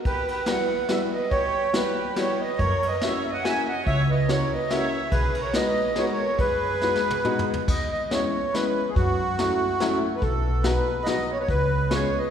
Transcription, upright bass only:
2.60 F#2
3.86 C#2
5.12 B1
6.38 F#2
7.68 E2
8.96 F#2
10.22 B1
11.48 C#2

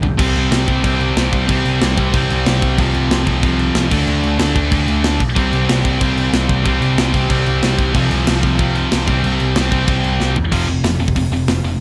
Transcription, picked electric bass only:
0.03 B1
0.19 C2
0.36 C2
0.51 C2
0.68 C2
0.84 C2
1.17 C2
1.33 C2
1.49 C2
1.65 C2
1.83 C2
1.98 C2
2.14 C2
2.31 C2
2.47 C2
2.63 C2
2.78 C2
2.95 C2
3.10 C2
3.27 C2
3.43 C2
3.76 C2
3.92 D2
4.07 D2
4.23 D2
4.40 D2
4.56 D2
4.72 D2
4.88 D2
5.03 D2
5.21 B1
5.36 C2
5.53 C2
5.69 C2
5.85 C2
6.01 C2
6.33 C2
6.49 C2
6.66 C2
6.82 C2
6.99 C2
7.14 C2
7.30 C2
7.47 C2
7.63 C2
7.79 C2
7.95 C2
8.11 C2
8.28 C2
8.43 C2
8.59 C2
8.93 C2
9.08 C2
9.24 C2
9.41 C2
9.56 C2
9.72 C2
9.88 C2
10.05 C2
10.21 C2
10.37 E2
10.53 F1
10.69 F1
10.85 F1
11.01 F1
11.16 F1
11.32 F1
11.48 F1
11.65 F1

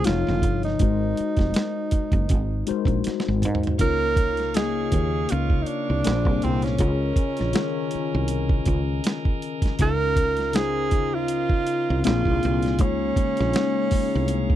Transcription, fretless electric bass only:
0.07 F1
0.28 F#1
0.44 G1
0.81 G#1
1.20 muted fretless electric bass stroke
1.39 F1
1.94 muted fretless electric bass stroke
2.13 F#1
2.31 G#1
2.70 muted fretless electric bass stroke
2.87 A#1
3.07 muted fretless electric bass stroke
3.28 G#1
3.45 G#2
3.81 C#2
4.93 D#2
5.32 C#2
5.90 C2
6.07 A#1
6.26 C2
6.44 C2
6.80 C#2
7.17 muted fretless electric bass stroke
7.41 A#1
7.95 muted fretless electric bass stroke
8.15 C2
8.67 C#2
9.80 C#2
10.93 D#2
11.32 C#2
11.90 C2
12.07 A#1
12.27 C2
12.45 C2
12.81 C#2
13.18 muted fretless electric bass stroke
13.40 A#1
13.93 muted fretless electric bass stroke
14.15 C2

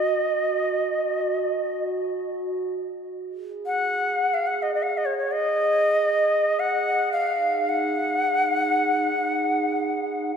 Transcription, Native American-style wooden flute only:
Already playing: D#5
3.66 F#5
4.34 F5
4.47 F#5
4.62 D#5
4.74 D#5
4.83 F#5
4.97 D#5
5.05 C#5
5.18 C#5
5.32 D#5
6.59 F#5
7.12 F5
7.69 F#5

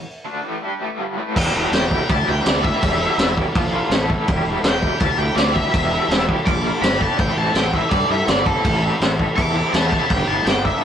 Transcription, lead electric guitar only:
1.73 G5
2.10 A5
2.29 G5
2.46 D5
2.63 E5
4.65 G5
5.00 A5
5.18 G5
5.36 D5
5.53 E5
6.46 D6
6.82 B5
7.02 A5
7.19 G5
7.38 A5
7.56 G5
7.76 E5
7.89 D5
8.11 E5
8.28 D5
8.46 A4
9.36 D6
9.73 A5
9.90 A5
10.10 G5
10.27 A5
10.45 G5
10.65 E5

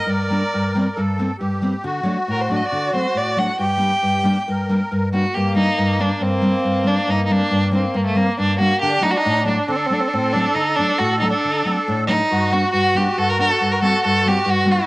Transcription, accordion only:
Already playing: A#4
0.96 A4
1.39 G4
1.84 F#4
3.59 G4
4.49 A#4
5.33 A#3
8.81 D4
9.69 A4
12.31 F#4

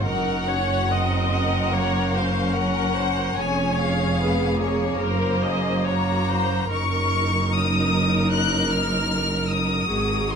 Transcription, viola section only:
0.05 A#4
0.49 C#5
0.91 D#5
1.74 C#5
2.15 C5
2.56 A#4
2.97 C5
3.38 C#5
4.19 G#4
5.00 A#4
5.44 D#5
5.87 C#5
6.30 C5
6.70 A#4
7.52 A#4
9.91 G#4

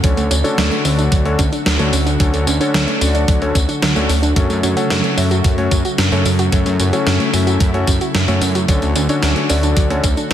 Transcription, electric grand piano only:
0.04 D3 C#4 D4 F#4 A4 C#5
0.44 D3 C#4 D4 F#4 A4 C#5
0.85 D3 D4 F#4 A4 C#5 D5
1.25 D3 C#4 D4 F#4 A4 C#5
1.79 D3 C#4 D4 F#4 A4 C#5
2.20 D3 C#4 D4 F#4 A4 C#5
2.61 D3 C#4 D4 F#4 A4 C#5
3.01 D3 D4 F#4 A4 C#5 D5
3.42 D3 C#4 D4 F#4 A4 C#5
3.96 D3 C#4 D4 F#4 A4 C#5
4.36 A3 C#4 F#4 A4 C#5
4.77 A3 C#4 F#4 A4 C#5
5.17 A3 C#4 F#4 A4 E5
5.58 A3 C#4 F#4 A4 C#5
6.12 A3 C#4 F#4 A4 C#5
6.53 A3 C#4 F#4 A4 C#5
6.93 A3 C#4 F#4 A4 C#5
7.33 A3 C#4 F#4 A4 E5
7.74 A3 C#4 F#4 A4 C#5
8.28 A3 C#4 F#4 A4 C#5
8.69 D3 C#4 D4 F#4 A4 C#5
9.09 D3 C#4 D4 F#4 A4 C#5
9.50 D3 D4 F#4 A4 C#5 D5
9.90 D3 C#4 D4 F#4 A4 C#5

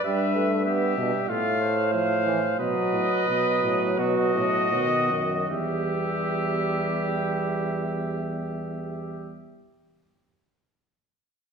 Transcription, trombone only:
0.05 G3
0.36 A3
0.67 B3
0.98 G3
1.29 A3
1.93 F3
2.26 E3
2.59 F#3
3.28 F#3
4.73 D#3
5.50 G3

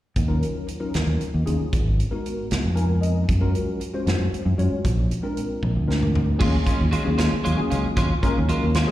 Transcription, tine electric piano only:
0.27 F#3 C#4 D#4 F4 A#4
0.79 F#3 C#4 D#4 F4 A#4
1.45 F#3 C#4 D#4 F4 G#4
2.11 G#3 B3 D#4 F#4 A#4
2.75 G#3 B3 D#4 F4 A#4 G#5
3.01 D#5
3.40 G#3 C#4 F4 F#4 A#4
3.94 G#3 C#4 F4 F#4 C5
4.58 G#3 C#4 F4 F#4 C#5
5.22 G#3 C4 D4 F4 A#4
5.88 G#3 C4 D4 F4 A#4
6.38 F#3 A#3 C#4 F4 G#4
7.04 F#3 A#3 C#4 F4 G#4
7.56 F#3 A#3 C#4 F4 G#4
8.22 F#3 A#3 C#4 F4 A#4
8.87 F#3 A#3 C#4 F4 G#4

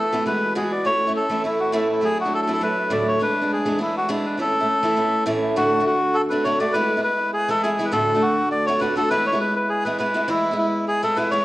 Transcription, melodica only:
Already playing: A4
0.27 B4
0.57 G#4
0.72 D5
0.86 C#5
1.16 A4
1.45 E4
1.60 F#4
1.75 E4
1.91 E4
2.04 G#4
2.21 F#4
2.34 A4
2.42 A4
2.53 A4
2.63 B4
2.92 D5
3.08 C#5
3.22 B4
3.53 G#4
3.82 E4
3.97 F#4
4.11 E4
4.26 B4
4.41 A4
5.57 F#4
5.86 F#4
6.14 A4
6.29 B4
6.44 C#5
6.60 D5
6.73 B4
7.03 B4
7.33 G#4
7.50 A4
7.63 G#4
7.85 B4
7.92 A4
8.22 F#4
8.51 D5
8.66 C#5
8.80 B4
8.97 A4
9.10 B4
9.26 C#5
9.40 B4
9.56 B4
9.69 G#4
9.85 B4
9.99 B4
10.29 E4
10.58 E4
10.87 G#4
11.03 A4
11.16 B4
11.31 C#5

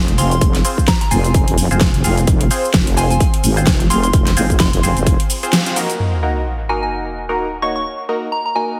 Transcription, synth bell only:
0.18 C6
0.31 C6
0.88 A#5
1.01 A#5
1.11 G#5
2.97 G#5
3.11 G#5
3.90 C6
4.03 C6
4.60 C6
6.69 G#5
6.83 G#5
7.62 C#6
7.76 C#6
8.32 A#5
8.46 A#5
8.56 G#5

